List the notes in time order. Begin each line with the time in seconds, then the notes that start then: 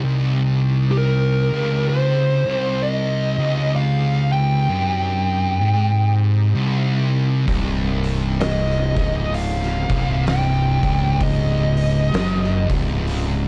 Already playing: C3 D#4 G4
0.04 C2
0.91 G4
0.97 A#4
1.52 C#2
1.89 C5
2.45 C2
2.83 D#5
3.38 C#2
3.76 F5
4.32 G5
4.70 F#2
5.62 G#2
6.54 C2
7.47 C1 C2, kick, open hi-hat
8.04 open hi-hat
8.41 D#5, snare, open hi-hat
8.70 snare
8.96 C#1 C#2, kick, open hi-hat
9.34 F5, open hi-hat
9.63 snare
9.89 C1 C2, kick, open hi-hat
10.27 G5, snare, open hi-hat
10.83 C#1 C#2, kick, open hi-hat
11.21 D#5, kick, open hi-hat
11.77 open hi-hat
12.13 F#1 F#2, snare, open hi-hat
12.44 snare
12.69 C#1 C#2, kick, open hi-hat
13.07 open hi-hat